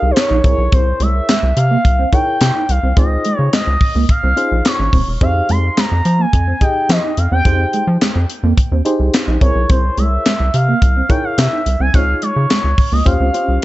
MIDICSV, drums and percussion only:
0, 0, Header, 1, 2, 480
1, 0, Start_track
1, 0, Key_signature, -4, "minor"
1, 0, Tempo, 560748
1, 621, Time_signature, 4, 2, 24, 8
1, 11679, End_track
2, 0, Start_track
2, 0, Title_t, "Drums"
2, 139, Note_on_c, 9, 42, 87
2, 146, Note_on_c, 9, 38, 113
2, 150, Note_on_c, 9, 39, 98
2, 224, Note_off_c, 9, 42, 0
2, 231, Note_off_c, 9, 38, 0
2, 236, Note_off_c, 9, 39, 0
2, 378, Note_on_c, 9, 36, 94
2, 379, Note_on_c, 9, 42, 66
2, 464, Note_off_c, 9, 36, 0
2, 464, Note_off_c, 9, 42, 0
2, 619, Note_on_c, 9, 42, 88
2, 621, Note_on_c, 9, 36, 117
2, 704, Note_off_c, 9, 42, 0
2, 706, Note_off_c, 9, 36, 0
2, 858, Note_on_c, 9, 42, 66
2, 943, Note_off_c, 9, 42, 0
2, 1102, Note_on_c, 9, 42, 90
2, 1105, Note_on_c, 9, 38, 115
2, 1110, Note_on_c, 9, 39, 94
2, 1187, Note_off_c, 9, 42, 0
2, 1191, Note_off_c, 9, 38, 0
2, 1195, Note_off_c, 9, 39, 0
2, 1342, Note_on_c, 9, 42, 80
2, 1427, Note_off_c, 9, 42, 0
2, 1583, Note_on_c, 9, 36, 100
2, 1584, Note_on_c, 9, 42, 86
2, 1668, Note_off_c, 9, 36, 0
2, 1670, Note_off_c, 9, 42, 0
2, 1820, Note_on_c, 9, 36, 88
2, 1824, Note_on_c, 9, 42, 62
2, 1906, Note_off_c, 9, 36, 0
2, 1910, Note_off_c, 9, 42, 0
2, 2060, Note_on_c, 9, 42, 88
2, 2067, Note_on_c, 9, 38, 122
2, 2072, Note_on_c, 9, 39, 100
2, 2146, Note_off_c, 9, 42, 0
2, 2153, Note_off_c, 9, 38, 0
2, 2157, Note_off_c, 9, 39, 0
2, 2303, Note_on_c, 9, 42, 69
2, 2389, Note_off_c, 9, 42, 0
2, 2540, Note_on_c, 9, 42, 89
2, 2541, Note_on_c, 9, 36, 113
2, 2625, Note_off_c, 9, 42, 0
2, 2626, Note_off_c, 9, 36, 0
2, 2778, Note_on_c, 9, 42, 63
2, 2864, Note_off_c, 9, 42, 0
2, 3022, Note_on_c, 9, 42, 83
2, 3025, Note_on_c, 9, 38, 113
2, 3030, Note_on_c, 9, 39, 97
2, 3107, Note_off_c, 9, 42, 0
2, 3111, Note_off_c, 9, 38, 0
2, 3115, Note_off_c, 9, 39, 0
2, 3259, Note_on_c, 9, 46, 77
2, 3260, Note_on_c, 9, 36, 102
2, 3345, Note_off_c, 9, 36, 0
2, 3345, Note_off_c, 9, 46, 0
2, 3502, Note_on_c, 9, 36, 102
2, 3503, Note_on_c, 9, 42, 81
2, 3587, Note_off_c, 9, 36, 0
2, 3589, Note_off_c, 9, 42, 0
2, 3742, Note_on_c, 9, 42, 64
2, 3828, Note_off_c, 9, 42, 0
2, 3980, Note_on_c, 9, 42, 86
2, 3987, Note_on_c, 9, 38, 117
2, 3992, Note_on_c, 9, 39, 98
2, 4066, Note_off_c, 9, 42, 0
2, 4073, Note_off_c, 9, 38, 0
2, 4077, Note_off_c, 9, 39, 0
2, 4219, Note_on_c, 9, 36, 92
2, 4222, Note_on_c, 9, 46, 64
2, 4305, Note_off_c, 9, 36, 0
2, 4308, Note_off_c, 9, 46, 0
2, 4461, Note_on_c, 9, 36, 111
2, 4462, Note_on_c, 9, 42, 93
2, 4547, Note_off_c, 9, 36, 0
2, 4548, Note_off_c, 9, 42, 0
2, 4699, Note_on_c, 9, 42, 64
2, 4785, Note_off_c, 9, 42, 0
2, 4941, Note_on_c, 9, 42, 89
2, 4945, Note_on_c, 9, 38, 113
2, 4950, Note_on_c, 9, 39, 96
2, 5027, Note_off_c, 9, 42, 0
2, 5031, Note_off_c, 9, 38, 0
2, 5035, Note_off_c, 9, 39, 0
2, 5180, Note_on_c, 9, 42, 75
2, 5265, Note_off_c, 9, 42, 0
2, 5421, Note_on_c, 9, 36, 98
2, 5421, Note_on_c, 9, 42, 88
2, 5507, Note_off_c, 9, 36, 0
2, 5507, Note_off_c, 9, 42, 0
2, 5659, Note_on_c, 9, 36, 82
2, 5663, Note_on_c, 9, 42, 66
2, 5745, Note_off_c, 9, 36, 0
2, 5749, Note_off_c, 9, 42, 0
2, 5901, Note_on_c, 9, 42, 88
2, 5908, Note_on_c, 9, 38, 121
2, 5913, Note_on_c, 9, 39, 102
2, 5987, Note_off_c, 9, 42, 0
2, 5994, Note_off_c, 9, 38, 0
2, 5998, Note_off_c, 9, 39, 0
2, 6140, Note_on_c, 9, 42, 69
2, 6226, Note_off_c, 9, 42, 0
2, 6379, Note_on_c, 9, 36, 112
2, 6380, Note_on_c, 9, 42, 95
2, 6465, Note_off_c, 9, 36, 0
2, 6466, Note_off_c, 9, 42, 0
2, 6619, Note_on_c, 9, 42, 63
2, 6705, Note_off_c, 9, 42, 0
2, 6860, Note_on_c, 9, 42, 93
2, 6864, Note_on_c, 9, 38, 112
2, 6868, Note_on_c, 9, 39, 96
2, 6946, Note_off_c, 9, 42, 0
2, 6950, Note_off_c, 9, 38, 0
2, 6954, Note_off_c, 9, 39, 0
2, 7101, Note_on_c, 9, 42, 78
2, 7187, Note_off_c, 9, 42, 0
2, 7340, Note_on_c, 9, 36, 93
2, 7342, Note_on_c, 9, 42, 88
2, 7426, Note_off_c, 9, 36, 0
2, 7427, Note_off_c, 9, 42, 0
2, 7580, Note_on_c, 9, 42, 64
2, 7666, Note_off_c, 9, 42, 0
2, 7820, Note_on_c, 9, 42, 90
2, 7828, Note_on_c, 9, 38, 114
2, 7832, Note_on_c, 9, 39, 105
2, 7906, Note_off_c, 9, 42, 0
2, 7913, Note_off_c, 9, 38, 0
2, 7918, Note_off_c, 9, 39, 0
2, 8058, Note_on_c, 9, 36, 96
2, 8060, Note_on_c, 9, 42, 66
2, 8144, Note_off_c, 9, 36, 0
2, 8146, Note_off_c, 9, 42, 0
2, 8299, Note_on_c, 9, 42, 89
2, 8301, Note_on_c, 9, 36, 112
2, 8385, Note_off_c, 9, 42, 0
2, 8386, Note_off_c, 9, 36, 0
2, 8539, Note_on_c, 9, 42, 64
2, 8624, Note_off_c, 9, 42, 0
2, 8780, Note_on_c, 9, 42, 94
2, 8784, Note_on_c, 9, 38, 114
2, 8788, Note_on_c, 9, 39, 91
2, 8865, Note_off_c, 9, 42, 0
2, 8869, Note_off_c, 9, 38, 0
2, 8874, Note_off_c, 9, 39, 0
2, 9021, Note_on_c, 9, 42, 79
2, 9107, Note_off_c, 9, 42, 0
2, 9261, Note_on_c, 9, 36, 98
2, 9264, Note_on_c, 9, 42, 85
2, 9347, Note_off_c, 9, 36, 0
2, 9349, Note_off_c, 9, 42, 0
2, 9499, Note_on_c, 9, 36, 91
2, 9503, Note_on_c, 9, 42, 63
2, 9584, Note_off_c, 9, 36, 0
2, 9589, Note_off_c, 9, 42, 0
2, 9741, Note_on_c, 9, 42, 89
2, 9748, Note_on_c, 9, 38, 110
2, 9753, Note_on_c, 9, 39, 102
2, 9827, Note_off_c, 9, 42, 0
2, 9834, Note_off_c, 9, 38, 0
2, 9838, Note_off_c, 9, 39, 0
2, 9983, Note_on_c, 9, 42, 66
2, 10069, Note_off_c, 9, 42, 0
2, 10221, Note_on_c, 9, 36, 109
2, 10224, Note_on_c, 9, 42, 90
2, 10307, Note_off_c, 9, 36, 0
2, 10309, Note_off_c, 9, 42, 0
2, 10460, Note_on_c, 9, 42, 63
2, 10546, Note_off_c, 9, 42, 0
2, 10703, Note_on_c, 9, 42, 87
2, 10706, Note_on_c, 9, 38, 115
2, 10711, Note_on_c, 9, 39, 87
2, 10788, Note_off_c, 9, 42, 0
2, 10792, Note_off_c, 9, 38, 0
2, 10797, Note_off_c, 9, 39, 0
2, 10940, Note_on_c, 9, 36, 104
2, 10943, Note_on_c, 9, 46, 78
2, 11026, Note_off_c, 9, 36, 0
2, 11029, Note_off_c, 9, 46, 0
2, 11181, Note_on_c, 9, 36, 94
2, 11185, Note_on_c, 9, 42, 87
2, 11267, Note_off_c, 9, 36, 0
2, 11271, Note_off_c, 9, 42, 0
2, 11422, Note_on_c, 9, 42, 63
2, 11508, Note_off_c, 9, 42, 0
2, 11679, End_track
0, 0, End_of_file